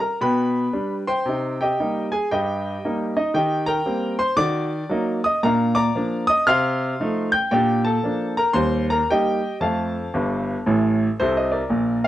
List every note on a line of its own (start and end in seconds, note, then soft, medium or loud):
0.00 0.19 A#4 medium
0.00 0.17 A#5 medium
0.21 0.65 B2 medium
0.21 1.03 B4 medium
0.21 1.03 G5 medium
0.21 0.94 B5 medium
0.73 1.02 G3 medium
0.73 1.02 D4 medium
1.07 1.56 C5 medium
1.07 1.56 G5 medium
1.07 1.51 C6 medium
1.26 1.70 C3 medium
1.26 1.57 D#4 medium
1.61 2.09 G4 medium
1.61 2.09 D#5 medium
1.61 2.04 G5 medium
1.80 2.08 G3 soft
1.80 2.08 A#3 soft
1.80 2.08 D#4 medium
2.12 2.30 G#4 medium
2.12 2.27 G#5 medium
2.31 2.75 G2 medium
2.31 3.13 G4 medium
2.31 3.13 D#5 medium
2.31 3.04 G5 medium
2.84 3.13 G3 soft
2.84 3.13 A#3 soft
2.84 3.13 D#4 medium
3.17 3.34 D#4 medium
3.17 3.32 D#5 medium
3.34 3.79 D#3 medium
3.34 3.66 G4 medium
3.34 3.66 D#5 medium
3.34 3.63 G5 medium
3.66 4.16 A#4 medium
3.66 4.16 G5 medium
3.66 4.11 A#5 medium
3.86 4.15 G3 soft
3.86 4.15 A#3 soft
3.86 4.15 C4 medium
4.19 4.37 C5 medium
4.19 4.35 C6 medium
4.37 4.82 D#3 medium
4.37 4.67 F#4 medium
4.37 5.20 D5 medium
4.37 5.11 D6 loud
4.89 5.19 F#3 medium
4.89 5.20 A#3 medium
4.89 5.20 D#4 medium
5.24 5.43 D#5 medium
5.24 5.40 D#6 medium
5.43 5.88 A#2 medium
5.43 5.74 D4 medium
5.43 5.75 A#4 medium
5.43 5.75 F5 medium
5.43 5.72 A#5 medium
5.75 6.25 D5 medium
5.75 6.25 A#5 medium
5.75 6.20 D6 loud
5.95 6.24 F3 medium
5.95 6.25 A#3 medium
5.95 6.25 D4 medium
6.27 6.47 D#5 medium
6.27 6.44 D#6 loud
6.47 6.92 C3 medium
6.47 7.30 F5 medium
6.47 7.30 C6 medium
6.47 7.20 F6 loud
7.00 7.29 F3 soft
7.00 7.30 A3 medium
7.00 7.30 D#4 medium
7.32 7.50 G5 medium
7.32 7.49 G6 loud
7.51 7.97 A#2 medium
7.51 7.82 D4 soft
7.51 7.85 G4 medium
7.51 7.84 D5 medium
7.51 7.80 G5 medium
7.85 8.35 A4 medium
7.85 8.30 A5 medium
8.03 8.33 F3 soft
8.03 8.33 A#3 soft
8.03 8.34 D4 medium
8.37 8.56 A#4 medium
8.37 8.54 A#5 medium
8.53 9.00 D#2 medium
8.53 8.85 G3 medium
8.53 8.88 C5 medium
8.53 8.84 C6 medium
8.90 9.09 A#4 medium
8.90 9.07 A#5 medium
9.10 9.39 G3 soft
9.10 9.39 A#3 soft
9.10 9.40 D#4 soft
9.10 9.60 G4 medium
9.10 9.60 D#5 medium
9.10 9.55 G5 loud
9.60 10.06 F2 medium
9.60 9.92 A3 soft
9.60 11.16 A4 soft
9.60 11.16 F5 medium
9.60 10.95 A5 medium
10.14 10.54 G1 medium
10.14 10.54 G2 medium
10.66 11.06 A1 medium
10.66 11.06 A2 medium
11.20 11.60 C2 medium
11.20 11.59 C3 medium
11.20 11.36 A4 medium
11.20 11.37 C5 medium
11.37 11.53 C5 soft
11.37 11.54 D#5 medium
11.52 12.02 A#4 medium
11.52 11.97 D5 medium
11.70 12.07 A#1 medium
11.70 12.07 A#2 medium
12.04 12.07 F5 medium